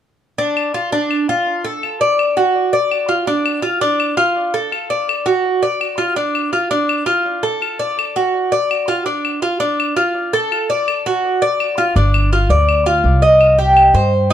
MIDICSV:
0, 0, Header, 1, 4, 480
1, 0, Start_track
1, 0, Tempo, 361664
1, 510, Time_signature, 4, 2, 24, 8
1, 19021, End_track
2, 0, Start_track
2, 0, Title_t, "Cuban tres"
2, 0, Program_c, 0, 25
2, 509, Note_on_c, 0, 62, 66
2, 974, Note_off_c, 0, 62, 0
2, 986, Note_on_c, 0, 65, 59
2, 1220, Note_off_c, 0, 65, 0
2, 1226, Note_on_c, 0, 62, 67
2, 1693, Note_off_c, 0, 62, 0
2, 1713, Note_on_c, 0, 65, 67
2, 2176, Note_off_c, 0, 65, 0
2, 2183, Note_on_c, 0, 69, 60
2, 2651, Note_off_c, 0, 69, 0
2, 2665, Note_on_c, 0, 74, 68
2, 3132, Note_off_c, 0, 74, 0
2, 3142, Note_on_c, 0, 66, 65
2, 3610, Note_off_c, 0, 66, 0
2, 3623, Note_on_c, 0, 74, 67
2, 4090, Note_off_c, 0, 74, 0
2, 4096, Note_on_c, 0, 65, 62
2, 4334, Note_off_c, 0, 65, 0
2, 4344, Note_on_c, 0, 62, 64
2, 4804, Note_off_c, 0, 62, 0
2, 4810, Note_on_c, 0, 65, 61
2, 5051, Note_off_c, 0, 65, 0
2, 5061, Note_on_c, 0, 62, 77
2, 5530, Note_off_c, 0, 62, 0
2, 5536, Note_on_c, 0, 65, 72
2, 6007, Note_off_c, 0, 65, 0
2, 6023, Note_on_c, 0, 69, 59
2, 6491, Note_off_c, 0, 69, 0
2, 6504, Note_on_c, 0, 74, 61
2, 6972, Note_off_c, 0, 74, 0
2, 6978, Note_on_c, 0, 66, 65
2, 7449, Note_off_c, 0, 66, 0
2, 7466, Note_on_c, 0, 74, 65
2, 7933, Note_off_c, 0, 74, 0
2, 7935, Note_on_c, 0, 65, 62
2, 8175, Note_off_c, 0, 65, 0
2, 8180, Note_on_c, 0, 62, 71
2, 8651, Note_off_c, 0, 62, 0
2, 8663, Note_on_c, 0, 65, 58
2, 8897, Note_off_c, 0, 65, 0
2, 8903, Note_on_c, 0, 62, 71
2, 9366, Note_off_c, 0, 62, 0
2, 9371, Note_on_c, 0, 65, 69
2, 9847, Note_off_c, 0, 65, 0
2, 9861, Note_on_c, 0, 69, 62
2, 10332, Note_off_c, 0, 69, 0
2, 10344, Note_on_c, 0, 74, 66
2, 10814, Note_off_c, 0, 74, 0
2, 10829, Note_on_c, 0, 66, 65
2, 11297, Note_off_c, 0, 66, 0
2, 11307, Note_on_c, 0, 74, 70
2, 11776, Note_off_c, 0, 74, 0
2, 11786, Note_on_c, 0, 65, 64
2, 12017, Note_off_c, 0, 65, 0
2, 12022, Note_on_c, 0, 62, 65
2, 12493, Note_off_c, 0, 62, 0
2, 12506, Note_on_c, 0, 65, 63
2, 12736, Note_off_c, 0, 65, 0
2, 12741, Note_on_c, 0, 62, 70
2, 13213, Note_off_c, 0, 62, 0
2, 13226, Note_on_c, 0, 65, 70
2, 13696, Note_off_c, 0, 65, 0
2, 13714, Note_on_c, 0, 69, 68
2, 14180, Note_off_c, 0, 69, 0
2, 14196, Note_on_c, 0, 74, 69
2, 14661, Note_off_c, 0, 74, 0
2, 14681, Note_on_c, 0, 66, 64
2, 15143, Note_off_c, 0, 66, 0
2, 15155, Note_on_c, 0, 74, 73
2, 15620, Note_off_c, 0, 74, 0
2, 15633, Note_on_c, 0, 65, 63
2, 15866, Note_off_c, 0, 65, 0
2, 15877, Note_on_c, 0, 62, 65
2, 16341, Note_off_c, 0, 62, 0
2, 16359, Note_on_c, 0, 65, 60
2, 16590, Note_off_c, 0, 65, 0
2, 16591, Note_on_c, 0, 74, 63
2, 17058, Note_off_c, 0, 74, 0
2, 17070, Note_on_c, 0, 65, 67
2, 17537, Note_off_c, 0, 65, 0
2, 17548, Note_on_c, 0, 75, 65
2, 18016, Note_off_c, 0, 75, 0
2, 18030, Note_on_c, 0, 67, 64
2, 18497, Note_off_c, 0, 67, 0
2, 18508, Note_on_c, 0, 72, 65
2, 18976, Note_off_c, 0, 72, 0
2, 19021, End_track
3, 0, Start_track
3, 0, Title_t, "Upright bass"
3, 0, Program_c, 1, 32
3, 15870, Note_on_c, 1, 31, 83
3, 16542, Note_off_c, 1, 31, 0
3, 16582, Note_on_c, 1, 38, 78
3, 17257, Note_off_c, 1, 38, 0
3, 17306, Note_on_c, 1, 36, 81
3, 18433, Note_off_c, 1, 36, 0
3, 18500, Note_on_c, 1, 43, 82
3, 19021, Note_off_c, 1, 43, 0
3, 19021, End_track
4, 0, Start_track
4, 0, Title_t, "Drums"
4, 753, Note_on_c, 9, 75, 57
4, 886, Note_off_c, 9, 75, 0
4, 1468, Note_on_c, 9, 75, 59
4, 1600, Note_off_c, 9, 75, 0
4, 2432, Note_on_c, 9, 75, 55
4, 2564, Note_off_c, 9, 75, 0
4, 2909, Note_on_c, 9, 75, 58
4, 3042, Note_off_c, 9, 75, 0
4, 3869, Note_on_c, 9, 75, 55
4, 4001, Note_off_c, 9, 75, 0
4, 4586, Note_on_c, 9, 75, 64
4, 4719, Note_off_c, 9, 75, 0
4, 5307, Note_on_c, 9, 75, 61
4, 5439, Note_off_c, 9, 75, 0
4, 6269, Note_on_c, 9, 75, 58
4, 6402, Note_off_c, 9, 75, 0
4, 6758, Note_on_c, 9, 75, 62
4, 6890, Note_off_c, 9, 75, 0
4, 7712, Note_on_c, 9, 75, 59
4, 7844, Note_off_c, 9, 75, 0
4, 8428, Note_on_c, 9, 75, 64
4, 8561, Note_off_c, 9, 75, 0
4, 9147, Note_on_c, 9, 75, 64
4, 9280, Note_off_c, 9, 75, 0
4, 10115, Note_on_c, 9, 75, 57
4, 10248, Note_off_c, 9, 75, 0
4, 10601, Note_on_c, 9, 75, 64
4, 10734, Note_off_c, 9, 75, 0
4, 11559, Note_on_c, 9, 75, 62
4, 11691, Note_off_c, 9, 75, 0
4, 12274, Note_on_c, 9, 75, 59
4, 12407, Note_off_c, 9, 75, 0
4, 13004, Note_on_c, 9, 75, 63
4, 13137, Note_off_c, 9, 75, 0
4, 13963, Note_on_c, 9, 75, 58
4, 14096, Note_off_c, 9, 75, 0
4, 14439, Note_on_c, 9, 75, 61
4, 14572, Note_off_c, 9, 75, 0
4, 15399, Note_on_c, 9, 75, 60
4, 15531, Note_off_c, 9, 75, 0
4, 16115, Note_on_c, 9, 75, 60
4, 16248, Note_off_c, 9, 75, 0
4, 16837, Note_on_c, 9, 75, 61
4, 16970, Note_off_c, 9, 75, 0
4, 17793, Note_on_c, 9, 75, 58
4, 17926, Note_off_c, 9, 75, 0
4, 18270, Note_on_c, 9, 75, 62
4, 18403, Note_off_c, 9, 75, 0
4, 19021, End_track
0, 0, End_of_file